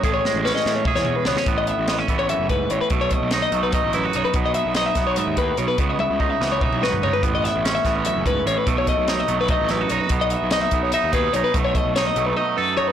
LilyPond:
<<
  \new Staff \with { instrumentName = "Clean electric guitar" } { \time 7/8 \key a \lydian \tempo 4 = 146 a'16 cis''8 r16 b'16 dis''8 cis''16 e''16 cis''8 b'16 cis''8 | r16 dis''16 e''8 dis''16 e''8 cis''16 e''8 b'8 cis''16 b'16 | r16 cis''16 dis''8 cis''16 dis''8 b'16 dis''8 b'8 cis''16 b'16 | r16 dis''16 e''8 dis''16 e''8 cis''16 e''8 b'8 cis''16 b'16 |
r16 dis''16 e''8 dis''16 e''8 cis''16 e''8 b'8 cis''16 b'16 | r16 dis''16 e''8 dis''16 e''8 cis''16 e''8 b'8 cis''16 b'16 | r16 cis''16 dis''8 cis''16 dis''8 b'16 dis''8 b'8 cis''16 b'16 | r16 dis''16 e''8 dis''16 e''8 cis''16 e''8 b'8 cis''16 b'16 |
r16 cis''16 dis''8 cis''16 dis''8 b'16 dis''8 b'8 cis''16 b'16 | }
  \new Staff \with { instrumentName = "Clean electric guitar" } { \time 7/8 \key a \lydian << { gis'8 gis8 cis'4 gis'4 b16 cis'16 | b4 b16 cis'16 b2 | a4 dis'8 a8 dis'8 e'16 fis'16 dis'8 | b4 dis'8 b2 |
b4 dis'8 b8 dis'8 fis'8 dis'8 | b4 cis'8 b2 | a4 dis'8 a8 dis'8 e'16 fis'16 dis'8 | b4 dis'8 b8 dis'8 gis'8 dis'8 |
a4 dis'8 a8 dis'8 a'8 dis'8 | } \\ { a,4. e4 e,4 | a,4. e8 fis,8 gis,8 a,8 | b,4. fis4 fis,4 | b,4. r8 gis,8 a,8 b,8 |
cis4. e4 gis,4 | a,4. e8 fis,8 gis,8 a,8 | b,4. fis4 fis,4 | b,4. r4 b,4 |
b,4. fis4 fis,4 | } >> }
  \new Staff \with { instrumentName = "Picked electric bass" } { \clef bass \time 7/8 \key a \lydian a,,8 r16 a,,8 r16 a,8 r16 e,8 r16 cis,16 r16 | a,,8. a,,8. a,,8. fis,,8. a,,16 r16 | b,,8. b,,8. b,,8. a,,8. b,,16 r16 | b,,8. b,,8. b,,8. dis,8. b,,16 r16 |
cis,8. cis,8. cis,8. b,,8. cis,16 r16 | a,,8. a,,8. a,,8. fis,,8. a,,16 r16 | b,,8. b,,8. b,,8. a,,8. b,,16 r16 | b,,8. b,,8. b,,8. dis,8. b,,16 r16 |
b,,8. b,,8. b,,8 r4. | }
  \new DrumStaff \with { instrumentName = "Drums" } \drummode { \time 7/8 <hh bd>8 sn8 sn16 sn16 sn8 <bd toml>16 sn16 toml8 sn16 sn16 | <hh bd>8 hh8 <hh sn>8 <hh bd>8 hh8 <hh bd>8 hh8 | <hh bd>8 <hh bd>8 <hh sn>8 hh8 <hh bd>8 hh8 hh8 | <hh bd>8 hh8 <hh sn>8 <hh bd sn>8 hh8 <hh bd>8 hh8 |
<hh bd>8 tommh8 bd8 sn8 <bd toml>16 toml16 sn16 tomfh16 tomfh16 tomfh16 | <hh bd>8 <hh sn>8 <hh sn>8 <hh bd sn>8 hh8 <hh bd>8 hh8 | <hh bd>8 <hh bd>8 <hh sn>8 hh8 <hh bd>8 <hh sn>8 hh8 | <hh bd>8 hh8 <hh sn>8 <hh bd>8 hh8 <hh bd>8 hh8 |
<hh bd>8 <hh bd>8 <hh sn>8 hh8 r4. | }
>>